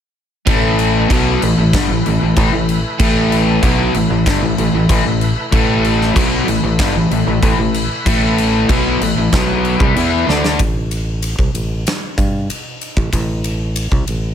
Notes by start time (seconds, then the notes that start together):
0.46 A1 A2 E3 A3 E4 B4, kick, crash
0.79 crash
1.10 B1 B2 F#3 B3, kick, crash
1.42 A1 A2 E3, crash
1.58 A1 A2 E3
1.73 G1 G2 D3, kick, snare, crash
1.90 A1 A2 E3
2.06 A1 A2 E3, crash
2.22 A1 A2 E3
2.37 A1 A2 E3, kick, crash
2.53 A1 A2 E3
2.69 crash
2.99 A1 A2 E3 A3, kick, crash
3.32 crash
3.62 B1 B2 F#3 B3, kick, crash
3.94 A1 A2 E3, crash
4.10 A1 A2 E3
4.26 G1 G2 D3, kick, snare, crash
4.42 A1 A2 E3
4.58 A1 A2 E3, crash
4.73 A1 A2 E3
4.89 A1 A2 E3, kick, crash
5.05 A1 A2 E3
5.21 crash
5.51 A1 A2 E3 A3, kick, crash
5.84 crash
6.02 snare
6.14 B1 B2 F#3 B3, kick, crash
6.47 A1 A2 E3, crash
6.63 A1 A2 E3
6.79 G1 G2 D3, kick, snare, crash
6.95 A1 A2 E3
7.11 A1 A2 E3, crash
7.27 A1 A2 E3
7.42 A1 A2 E3, kick, crash
7.58 A1 A2 E3
7.74 crash
8.05 A1 A2 E3 A3, kick, crash
8.38 crash
8.69 B1 B2 F#3 B3, kick, crash
9.01 A1 A2 E3, crash
9.18 A1 A2 E3
9.32 B1 B2 F#3 B3, kick, snare, crash
9.65 crash
9.80 C2 C3 G3, kick
9.96 E2 E3 B3 E4, crash
10.28 D2 D3 A3 D4, snare
10.45 snare
10.59 A1, kick, ride
10.91 ride
11.22 ride
11.39 C2, kick
11.54 A1, ride
11.87 snare, ride
12.18 G2, kick, ride
12.50 muted fingered electric bass stroke, ride
12.81 ride
12.97 A1, kick
13.13 A1, kick, ride
13.44 ride
13.76 ride
13.91 C2, kick
14.07 A1, ride